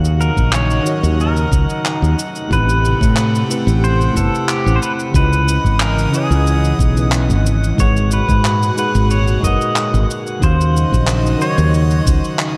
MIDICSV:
0, 0, Header, 1, 7, 480
1, 0, Start_track
1, 0, Key_signature, 5, "minor"
1, 0, Tempo, 659341
1, 1827, Time_signature, 4, 2, 24, 8
1, 9152, End_track
2, 0, Start_track
2, 0, Title_t, "Synth texture"
2, 0, Program_c, 0, 99
2, 0, Note_on_c, 0, 78, 69
2, 9152, Note_off_c, 0, 78, 0
2, 9152, End_track
3, 0, Start_track
3, 0, Title_t, "Pedal steel guitar"
3, 0, Program_c, 1, 26
3, 150, Note_on_c, 1, 70, 87
3, 393, Note_off_c, 1, 70, 0
3, 396, Note_on_c, 1, 73, 98
3, 877, Note_off_c, 1, 73, 0
3, 880, Note_on_c, 1, 70, 79
3, 1564, Note_off_c, 1, 70, 0
3, 1840, Note_on_c, 1, 71, 100
3, 2792, Note_off_c, 1, 71, 0
3, 2794, Note_on_c, 1, 72, 103
3, 3033, Note_on_c, 1, 69, 90
3, 3037, Note_off_c, 1, 72, 0
3, 3267, Note_on_c, 1, 67, 83
3, 3277, Note_off_c, 1, 69, 0
3, 3463, Note_on_c, 1, 72, 75
3, 3464, Note_off_c, 1, 67, 0
3, 3509, Note_off_c, 1, 72, 0
3, 3513, Note_on_c, 1, 71, 96
3, 3577, Note_off_c, 1, 71, 0
3, 3755, Note_on_c, 1, 71, 97
3, 4202, Note_off_c, 1, 71, 0
3, 4233, Note_on_c, 1, 70, 89
3, 4476, Note_on_c, 1, 68, 79
3, 4477, Note_off_c, 1, 70, 0
3, 5162, Note_off_c, 1, 68, 0
3, 5679, Note_on_c, 1, 73, 93
3, 5918, Note_off_c, 1, 73, 0
3, 5921, Note_on_c, 1, 71, 89
3, 6389, Note_off_c, 1, 71, 0
3, 6397, Note_on_c, 1, 71, 86
3, 6615, Note_off_c, 1, 71, 0
3, 6632, Note_on_c, 1, 73, 95
3, 6853, Note_off_c, 1, 73, 0
3, 6873, Note_on_c, 1, 75, 97
3, 7321, Note_off_c, 1, 75, 0
3, 7597, Note_on_c, 1, 72, 98
3, 8309, Note_off_c, 1, 72, 0
3, 8312, Note_on_c, 1, 73, 107
3, 8770, Note_off_c, 1, 73, 0
3, 8770, Note_on_c, 1, 72, 107
3, 9000, Note_off_c, 1, 72, 0
3, 9152, End_track
4, 0, Start_track
4, 0, Title_t, "Tine electric piano"
4, 0, Program_c, 2, 4
4, 0, Note_on_c, 2, 51, 80
4, 0, Note_on_c, 2, 63, 70
4, 0, Note_on_c, 2, 66, 71
4, 0, Note_on_c, 2, 73, 70
4, 0, Note_on_c, 2, 77, 81
4, 26, Control_c, 2, 64, 127
4, 586, Note_off_c, 2, 51, 0
4, 592, Note_off_c, 2, 63, 0
4, 598, Note_off_c, 2, 66, 0
4, 602, Note_on_c, 2, 51, 92
4, 604, Note_off_c, 2, 73, 0
4, 610, Note_off_c, 2, 77, 0
4, 614, Note_on_c, 2, 63, 73
4, 625, Note_on_c, 2, 66, 77
4, 638, Note_on_c, 2, 73, 80
4, 650, Note_on_c, 2, 75, 96
4, 1560, Note_off_c, 2, 51, 0
4, 1567, Note_off_c, 2, 63, 0
4, 1572, Note_off_c, 2, 66, 0
4, 1578, Note_off_c, 2, 73, 0
4, 1584, Note_off_c, 2, 75, 0
4, 1596, Control_c, 2, 64, 0
4, 1735, Control_c, 2, 64, 127
4, 1803, Note_on_c, 2, 57, 72
4, 1816, Note_on_c, 2, 64, 64
4, 1829, Note_on_c, 2, 67, 63
4, 1841, Note_on_c, 2, 71, 64
4, 1851, Note_on_c, 2, 60, 80
4, 2507, Note_off_c, 2, 57, 0
4, 2514, Note_off_c, 2, 64, 0
4, 2520, Note_off_c, 2, 67, 0
4, 2526, Note_off_c, 2, 71, 0
4, 2532, Note_off_c, 2, 60, 0
4, 2539, Note_on_c, 2, 57, 71
4, 2545, Note_on_c, 2, 64, 62
4, 2551, Note_on_c, 2, 67, 63
4, 2558, Note_on_c, 2, 71, 64
4, 2562, Note_on_c, 2, 60, 76
4, 2996, Note_off_c, 2, 57, 0
4, 2998, Note_off_c, 2, 64, 0
4, 3001, Note_off_c, 2, 67, 0
4, 3004, Note_on_c, 2, 57, 86
4, 3005, Note_off_c, 2, 71, 0
4, 3007, Note_off_c, 2, 60, 0
4, 3014, Note_on_c, 2, 64, 84
4, 3026, Note_on_c, 2, 67, 77
4, 3039, Note_on_c, 2, 71, 84
4, 3050, Note_on_c, 2, 72, 103
4, 3708, Note_off_c, 2, 57, 0
4, 3713, Note_off_c, 2, 64, 0
4, 3719, Note_off_c, 2, 67, 0
4, 3724, Note_on_c, 2, 49, 77
4, 3725, Note_off_c, 2, 71, 0
4, 3731, Note_off_c, 2, 72, 0
4, 3734, Note_on_c, 2, 61, 68
4, 3744, Note_on_c, 2, 64, 72
4, 3756, Control_c, 2, 64, 0
4, 3758, Note_on_c, 2, 71, 72
4, 3769, Note_on_c, 2, 75, 87
4, 3891, Control_c, 2, 64, 127
4, 4428, Note_off_c, 2, 49, 0
4, 4433, Note_off_c, 2, 61, 0
4, 4438, Note_off_c, 2, 64, 0
4, 4444, Note_on_c, 2, 49, 83
4, 4445, Note_off_c, 2, 71, 0
4, 4450, Note_off_c, 2, 75, 0
4, 4453, Note_on_c, 2, 61, 75
4, 4467, Note_on_c, 2, 64, 78
4, 4479, Note_on_c, 2, 71, 75
4, 4491, Note_on_c, 2, 73, 96
4, 5036, Note_off_c, 2, 49, 0
4, 5041, Note_off_c, 2, 61, 0
4, 5048, Note_off_c, 2, 64, 0
4, 5048, Note_on_c, 2, 49, 72
4, 5054, Note_off_c, 2, 71, 0
4, 5060, Note_off_c, 2, 73, 0
4, 5060, Note_on_c, 2, 61, 64
4, 5072, Note_on_c, 2, 64, 64
4, 5084, Note_on_c, 2, 71, 62
4, 5096, Note_on_c, 2, 75, 76
4, 5627, Note_off_c, 2, 49, 0
4, 5633, Note_off_c, 2, 61, 0
4, 5639, Note_off_c, 2, 64, 0
4, 5642, Note_on_c, 2, 56, 69
4, 5645, Note_off_c, 2, 71, 0
4, 5651, Note_off_c, 2, 75, 0
4, 5654, Note_on_c, 2, 63, 65
4, 5666, Note_on_c, 2, 68, 67
4, 5676, Control_c, 2, 64, 0
4, 5679, Note_on_c, 2, 71, 65
4, 5689, Note_on_c, 2, 78, 79
4, 5788, Control_c, 2, 64, 127
4, 6347, Note_off_c, 2, 56, 0
4, 6353, Note_off_c, 2, 63, 0
4, 6359, Note_off_c, 2, 68, 0
4, 6365, Note_off_c, 2, 71, 0
4, 6371, Note_off_c, 2, 78, 0
4, 6376, Note_on_c, 2, 56, 72
4, 6382, Note_on_c, 2, 63, 59
4, 6389, Note_on_c, 2, 68, 67
4, 6396, Note_on_c, 2, 71, 58
4, 6399, Note_on_c, 2, 78, 74
4, 6834, Note_off_c, 2, 56, 0
4, 6837, Note_off_c, 2, 63, 0
4, 6840, Note_off_c, 2, 68, 0
4, 6844, Note_off_c, 2, 71, 0
4, 6845, Note_on_c, 2, 56, 91
4, 6846, Note_off_c, 2, 78, 0
4, 6860, Note_on_c, 2, 63, 88
4, 6870, Note_on_c, 2, 70, 83
4, 6883, Note_on_c, 2, 71, 85
4, 6894, Note_on_c, 2, 78, 104
4, 7548, Note_off_c, 2, 56, 0
4, 7556, Note_off_c, 2, 63, 0
4, 7561, Note_off_c, 2, 70, 0
4, 7565, Note_on_c, 2, 51, 81
4, 7567, Note_off_c, 2, 71, 0
4, 7573, Note_off_c, 2, 78, 0
4, 7578, Note_on_c, 2, 63, 70
4, 7590, Note_on_c, 2, 66, 70
4, 7595, Control_c, 2, 64, 0
4, 7602, Note_on_c, 2, 61, 76
4, 7613, Note_on_c, 2, 77, 90
4, 7708, Control_c, 2, 64, 127
4, 8268, Note_off_c, 2, 51, 0
4, 8275, Note_off_c, 2, 63, 0
4, 8281, Note_off_c, 2, 66, 0
4, 8283, Note_on_c, 2, 51, 92
4, 8287, Note_off_c, 2, 61, 0
4, 8292, Note_off_c, 2, 77, 0
4, 8295, Note_on_c, 2, 63, 83
4, 8307, Note_on_c, 2, 66, 81
4, 8318, Note_on_c, 2, 73, 86
4, 8328, Note_on_c, 2, 75, 97
4, 9152, Note_off_c, 2, 51, 0
4, 9152, Note_off_c, 2, 63, 0
4, 9152, Note_off_c, 2, 66, 0
4, 9152, Note_off_c, 2, 73, 0
4, 9152, Note_off_c, 2, 75, 0
4, 9152, End_track
5, 0, Start_track
5, 0, Title_t, "Analog synth pad"
5, 0, Program_c, 3, 89
5, 0, Note_on_c, 3, 49, 78
5, 0, Note_on_c, 3, 54, 69
5, 0, Note_on_c, 3, 63, 67
5, 0, Note_on_c, 3, 75, 83
5, 1569, Note_off_c, 3, 49, 0
5, 1570, Note_off_c, 3, 54, 0
5, 1571, Note_off_c, 3, 63, 0
5, 1571, Note_off_c, 3, 75, 0
5, 1583, Note_on_c, 3, 57, 79
5, 1583, Note_on_c, 3, 67, 88
5, 1585, Note_on_c, 3, 48, 78
5, 3723, Note_off_c, 3, 57, 0
5, 3723, Note_off_c, 3, 67, 0
5, 3724, Note_off_c, 3, 48, 0
5, 3747, Note_on_c, 3, 75, 81
5, 3748, Note_on_c, 3, 49, 75
5, 3751, Note_on_c, 3, 52, 72
5, 5648, Note_off_c, 3, 49, 0
5, 5648, Note_off_c, 3, 75, 0
5, 5649, Note_off_c, 3, 52, 0
5, 5664, Note_on_c, 3, 56, 71
5, 5664, Note_on_c, 3, 66, 87
5, 5667, Note_on_c, 3, 46, 75
5, 7566, Note_off_c, 3, 56, 0
5, 7566, Note_off_c, 3, 66, 0
5, 7567, Note_off_c, 3, 46, 0
5, 7584, Note_on_c, 3, 49, 77
5, 7586, Note_on_c, 3, 54, 71
5, 7586, Note_on_c, 3, 63, 73
5, 7587, Note_on_c, 3, 75, 88
5, 9152, Note_off_c, 3, 49, 0
5, 9152, Note_off_c, 3, 54, 0
5, 9152, Note_off_c, 3, 63, 0
5, 9152, Note_off_c, 3, 75, 0
5, 9152, End_track
6, 0, Start_track
6, 0, Title_t, "Fretless electric bass"
6, 0, Program_c, 4, 35
6, 0, Note_on_c, 4, 39, 83
6, 212, Note_off_c, 4, 39, 0
6, 270, Note_on_c, 4, 34, 77
6, 573, Note_off_c, 4, 34, 0
6, 752, Note_on_c, 4, 39, 91
6, 1054, Note_off_c, 4, 39, 0
6, 1104, Note_on_c, 4, 37, 88
6, 1195, Note_off_c, 4, 37, 0
6, 1472, Note_on_c, 4, 39, 86
6, 1554, Note_off_c, 4, 39, 0
6, 1826, Note_on_c, 4, 33, 82
6, 2134, Note_off_c, 4, 33, 0
6, 2193, Note_on_c, 4, 45, 79
6, 2494, Note_off_c, 4, 45, 0
6, 2671, Note_on_c, 4, 33, 86
6, 2973, Note_off_c, 4, 33, 0
6, 3026, Note_on_c, 4, 31, 83
6, 3116, Note_off_c, 4, 31, 0
6, 3395, Note_on_c, 4, 33, 94
6, 3475, Note_off_c, 4, 33, 0
6, 3743, Note_on_c, 4, 37, 90
6, 4053, Note_off_c, 4, 37, 0
6, 4109, Note_on_c, 4, 32, 75
6, 4412, Note_off_c, 4, 32, 0
6, 4591, Note_on_c, 4, 37, 88
6, 4893, Note_off_c, 4, 37, 0
6, 4944, Note_on_c, 4, 35, 84
6, 5311, Note_on_c, 4, 32, 75
6, 5322, Note_off_c, 4, 35, 0
6, 5614, Note_off_c, 4, 32, 0
6, 5667, Note_on_c, 4, 32, 82
6, 5975, Note_off_c, 4, 32, 0
6, 6032, Note_on_c, 4, 44, 74
6, 6334, Note_off_c, 4, 44, 0
6, 6514, Note_on_c, 4, 32, 86
6, 6815, Note_off_c, 4, 32, 0
6, 6865, Note_on_c, 4, 30, 80
6, 6956, Note_off_c, 4, 30, 0
6, 7235, Note_on_c, 4, 32, 96
6, 7315, Note_off_c, 4, 32, 0
6, 7587, Note_on_c, 4, 39, 88
6, 7895, Note_off_c, 4, 39, 0
6, 7953, Note_on_c, 4, 34, 77
6, 8254, Note_off_c, 4, 34, 0
6, 8430, Note_on_c, 4, 39, 91
6, 8733, Note_off_c, 4, 39, 0
6, 8784, Note_on_c, 4, 37, 87
6, 8875, Note_off_c, 4, 37, 0
6, 9152, End_track
7, 0, Start_track
7, 0, Title_t, "Drums"
7, 34, Note_on_c, 9, 69, 39
7, 107, Note_off_c, 9, 69, 0
7, 151, Note_on_c, 9, 69, 71
7, 224, Note_off_c, 9, 69, 0
7, 269, Note_on_c, 9, 36, 62
7, 272, Note_on_c, 9, 69, 50
7, 342, Note_off_c, 9, 36, 0
7, 345, Note_off_c, 9, 69, 0
7, 382, Note_on_c, 9, 39, 90
7, 397, Note_on_c, 9, 69, 53
7, 455, Note_off_c, 9, 39, 0
7, 470, Note_off_c, 9, 69, 0
7, 513, Note_on_c, 9, 69, 39
7, 585, Note_off_c, 9, 69, 0
7, 627, Note_on_c, 9, 69, 76
7, 700, Note_off_c, 9, 69, 0
7, 756, Note_on_c, 9, 69, 48
7, 829, Note_off_c, 9, 69, 0
7, 874, Note_on_c, 9, 69, 58
7, 947, Note_off_c, 9, 69, 0
7, 994, Note_on_c, 9, 69, 38
7, 1067, Note_off_c, 9, 69, 0
7, 1104, Note_on_c, 9, 36, 103
7, 1111, Note_on_c, 9, 69, 81
7, 1177, Note_off_c, 9, 36, 0
7, 1184, Note_off_c, 9, 69, 0
7, 1235, Note_on_c, 9, 69, 46
7, 1308, Note_off_c, 9, 69, 0
7, 1350, Note_on_c, 9, 39, 90
7, 1351, Note_on_c, 9, 69, 50
7, 1423, Note_off_c, 9, 39, 0
7, 1424, Note_off_c, 9, 69, 0
7, 1484, Note_on_c, 9, 69, 38
7, 1557, Note_off_c, 9, 69, 0
7, 1594, Note_on_c, 9, 69, 74
7, 1667, Note_off_c, 9, 69, 0
7, 1714, Note_on_c, 9, 69, 48
7, 1786, Note_off_c, 9, 69, 0
7, 1826, Note_on_c, 9, 36, 105
7, 1837, Note_on_c, 9, 69, 58
7, 1898, Note_off_c, 9, 36, 0
7, 1909, Note_off_c, 9, 69, 0
7, 1960, Note_on_c, 9, 69, 39
7, 2032, Note_off_c, 9, 69, 0
7, 2075, Note_on_c, 9, 69, 73
7, 2148, Note_off_c, 9, 69, 0
7, 2192, Note_on_c, 9, 36, 106
7, 2204, Note_on_c, 9, 69, 47
7, 2265, Note_off_c, 9, 36, 0
7, 2276, Note_off_c, 9, 69, 0
7, 2304, Note_on_c, 9, 39, 88
7, 2310, Note_on_c, 9, 69, 59
7, 2376, Note_off_c, 9, 39, 0
7, 2383, Note_off_c, 9, 69, 0
7, 2441, Note_on_c, 9, 69, 44
7, 2513, Note_off_c, 9, 69, 0
7, 2554, Note_on_c, 9, 69, 79
7, 2627, Note_off_c, 9, 69, 0
7, 2678, Note_on_c, 9, 69, 53
7, 2751, Note_off_c, 9, 69, 0
7, 2797, Note_on_c, 9, 69, 51
7, 2870, Note_off_c, 9, 69, 0
7, 2920, Note_on_c, 9, 69, 38
7, 2993, Note_off_c, 9, 69, 0
7, 3025, Note_on_c, 9, 36, 63
7, 3033, Note_on_c, 9, 69, 85
7, 3098, Note_off_c, 9, 36, 0
7, 3106, Note_off_c, 9, 69, 0
7, 3165, Note_on_c, 9, 69, 46
7, 3238, Note_off_c, 9, 69, 0
7, 3267, Note_on_c, 9, 39, 98
7, 3271, Note_on_c, 9, 69, 56
7, 3340, Note_off_c, 9, 39, 0
7, 3344, Note_off_c, 9, 69, 0
7, 3402, Note_on_c, 9, 69, 37
7, 3475, Note_off_c, 9, 69, 0
7, 3513, Note_on_c, 9, 69, 78
7, 3586, Note_off_c, 9, 69, 0
7, 3636, Note_on_c, 9, 69, 45
7, 3709, Note_off_c, 9, 69, 0
7, 3745, Note_on_c, 9, 36, 105
7, 3749, Note_on_c, 9, 69, 65
7, 3818, Note_off_c, 9, 36, 0
7, 3821, Note_off_c, 9, 69, 0
7, 3879, Note_on_c, 9, 69, 44
7, 3952, Note_off_c, 9, 69, 0
7, 3992, Note_on_c, 9, 69, 83
7, 4065, Note_off_c, 9, 69, 0
7, 4111, Note_on_c, 9, 36, 58
7, 4119, Note_on_c, 9, 69, 48
7, 4183, Note_off_c, 9, 36, 0
7, 4192, Note_off_c, 9, 69, 0
7, 4223, Note_on_c, 9, 39, 100
7, 4233, Note_on_c, 9, 69, 61
7, 4295, Note_off_c, 9, 39, 0
7, 4306, Note_off_c, 9, 69, 0
7, 4357, Note_on_c, 9, 69, 46
7, 4430, Note_off_c, 9, 69, 0
7, 4469, Note_on_c, 9, 69, 80
7, 4542, Note_off_c, 9, 69, 0
7, 4597, Note_on_c, 9, 69, 49
7, 4670, Note_off_c, 9, 69, 0
7, 4709, Note_on_c, 9, 69, 59
7, 4782, Note_off_c, 9, 69, 0
7, 4837, Note_on_c, 9, 69, 39
7, 4910, Note_off_c, 9, 69, 0
7, 4945, Note_on_c, 9, 36, 101
7, 4953, Note_on_c, 9, 69, 86
7, 5017, Note_off_c, 9, 36, 0
7, 5026, Note_off_c, 9, 69, 0
7, 5073, Note_on_c, 9, 69, 54
7, 5146, Note_off_c, 9, 69, 0
7, 5182, Note_on_c, 9, 39, 96
7, 5190, Note_on_c, 9, 69, 60
7, 5254, Note_off_c, 9, 39, 0
7, 5262, Note_off_c, 9, 69, 0
7, 5315, Note_on_c, 9, 69, 41
7, 5387, Note_off_c, 9, 69, 0
7, 5433, Note_on_c, 9, 69, 85
7, 5505, Note_off_c, 9, 69, 0
7, 5560, Note_on_c, 9, 69, 48
7, 5633, Note_off_c, 9, 69, 0
7, 5666, Note_on_c, 9, 36, 106
7, 5672, Note_on_c, 9, 69, 54
7, 5739, Note_off_c, 9, 36, 0
7, 5745, Note_off_c, 9, 69, 0
7, 5799, Note_on_c, 9, 69, 39
7, 5872, Note_off_c, 9, 69, 0
7, 5906, Note_on_c, 9, 69, 78
7, 5979, Note_off_c, 9, 69, 0
7, 6032, Note_on_c, 9, 36, 95
7, 6037, Note_on_c, 9, 69, 43
7, 6105, Note_off_c, 9, 36, 0
7, 6110, Note_off_c, 9, 69, 0
7, 6150, Note_on_c, 9, 39, 87
7, 6154, Note_on_c, 9, 69, 61
7, 6223, Note_off_c, 9, 39, 0
7, 6226, Note_off_c, 9, 69, 0
7, 6280, Note_on_c, 9, 69, 42
7, 6353, Note_off_c, 9, 69, 0
7, 6390, Note_on_c, 9, 69, 86
7, 6463, Note_off_c, 9, 69, 0
7, 6515, Note_on_c, 9, 69, 42
7, 6588, Note_off_c, 9, 69, 0
7, 6628, Note_on_c, 9, 69, 53
7, 6701, Note_off_c, 9, 69, 0
7, 6752, Note_on_c, 9, 69, 40
7, 6825, Note_off_c, 9, 69, 0
7, 6866, Note_on_c, 9, 36, 58
7, 6874, Note_on_c, 9, 69, 86
7, 6939, Note_off_c, 9, 36, 0
7, 6947, Note_off_c, 9, 69, 0
7, 6997, Note_on_c, 9, 69, 48
7, 7069, Note_off_c, 9, 69, 0
7, 7105, Note_on_c, 9, 39, 86
7, 7113, Note_on_c, 9, 69, 53
7, 7178, Note_off_c, 9, 39, 0
7, 7185, Note_off_c, 9, 69, 0
7, 7239, Note_on_c, 9, 69, 37
7, 7312, Note_off_c, 9, 69, 0
7, 7357, Note_on_c, 9, 69, 82
7, 7430, Note_off_c, 9, 69, 0
7, 7474, Note_on_c, 9, 69, 51
7, 7547, Note_off_c, 9, 69, 0
7, 7586, Note_on_c, 9, 36, 97
7, 7590, Note_on_c, 9, 69, 53
7, 7659, Note_off_c, 9, 36, 0
7, 7663, Note_off_c, 9, 69, 0
7, 7723, Note_on_c, 9, 69, 38
7, 7796, Note_off_c, 9, 69, 0
7, 7837, Note_on_c, 9, 69, 79
7, 7910, Note_off_c, 9, 69, 0
7, 7952, Note_on_c, 9, 36, 59
7, 7963, Note_on_c, 9, 69, 45
7, 8025, Note_off_c, 9, 36, 0
7, 8036, Note_off_c, 9, 69, 0
7, 8061, Note_on_c, 9, 39, 105
7, 8075, Note_on_c, 9, 69, 61
7, 8134, Note_off_c, 9, 39, 0
7, 8148, Note_off_c, 9, 69, 0
7, 8199, Note_on_c, 9, 69, 42
7, 8272, Note_off_c, 9, 69, 0
7, 8308, Note_on_c, 9, 69, 77
7, 8380, Note_off_c, 9, 69, 0
7, 8430, Note_on_c, 9, 69, 47
7, 8503, Note_off_c, 9, 69, 0
7, 8548, Note_on_c, 9, 69, 53
7, 8620, Note_off_c, 9, 69, 0
7, 8667, Note_on_c, 9, 69, 42
7, 8740, Note_off_c, 9, 69, 0
7, 8785, Note_on_c, 9, 36, 93
7, 8787, Note_on_c, 9, 69, 82
7, 8857, Note_off_c, 9, 36, 0
7, 8860, Note_off_c, 9, 69, 0
7, 8913, Note_on_c, 9, 69, 47
7, 8986, Note_off_c, 9, 69, 0
7, 9020, Note_on_c, 9, 39, 87
7, 9031, Note_on_c, 9, 69, 58
7, 9092, Note_off_c, 9, 39, 0
7, 9104, Note_off_c, 9, 69, 0
7, 9152, End_track
0, 0, End_of_file